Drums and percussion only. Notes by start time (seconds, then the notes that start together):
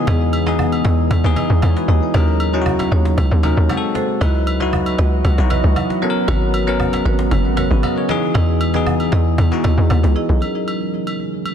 0.07 cajon bass, high agogo
0.33 high agogo
0.47 cajon slap
0.59 cajon bass, low woodblock
0.72 high agogo
0.85 cajon slap
0.98 cajon slap
1.11 cajon bass, high agogo
1.24 cajon slap
1.36 cajon bass, cajon slap, high agogo
1.62 cajon bass, high agogo, low woodblock
1.77 cajon slap
1.89 cajon slap
2.02 cajon slap
2.14 cajon bass, high agogo
2.28 cajon slap
2.40 cajon slap, high agogo
2.53 cajon slap
2.66 cajon bass, low woodblock
2.79 cajon slap, high agogo
3.05 cajon slap
3.18 cajon bass, high agogo
3.43 cajon bass, cajon slap, high agogo
3.69 cajon bass, high agogo, low woodblock
3.95 cajon slap
4.08 cajon slap
4.21 cajon bass, high agogo
4.35 cajon slap
4.47 cajon slap, high agogo
4.60 cajon slap
4.73 cajon bass, low woodblock
4.86 high agogo
4.98 cajon slap
5.25 cajon bass, high agogo
5.38 cajon slap
5.50 cajon bass, cajon slap, high agogo
5.64 cajon slap
5.76 cajon bass, high agogo, low woodblock
5.90 cajon slap
6.02 cajon slap
6.16 cajon slap
6.28 cajon bass, high agogo
6.42 cajon slap
6.54 cajon slap, high agogo
6.67 cajon slap
6.80 cajon bass, low woodblock
6.93 cajon slap, high agogo
7.06 cajon slap
7.19 cajon slap
7.31 cajon bass, high agogo
7.57 cajon bass, cajon slap, high agogo
7.83 cajon bass, high agogo, low woodblock
7.97 cajon slap
8.09 cajon slap
8.22 cajon slap
8.35 cajon bass, high agogo
8.49 cajon slap
8.61 high agogo
8.74 cajon slap
8.86 cajon bass, low woodblock
9.00 high agogo
9.12 cajon slap
9.26 cajon slap
9.38 cajon bass, high agogo
9.52 cajon slap
9.64 cajon bass, cajon slap, high agogo
9.90 cajon bass, high agogo, low woodblock
10.04 cajon slap
10.16 cajon slap
10.29 cajon slap
10.42 high agogo
10.56 cajon slap
10.68 cajon slap, high agogo
10.81 cajon slap
10.94 cajon slap
11.07 cajon slap, high agogo
11.20 cajon slap
11.45 cajon slap, high agogo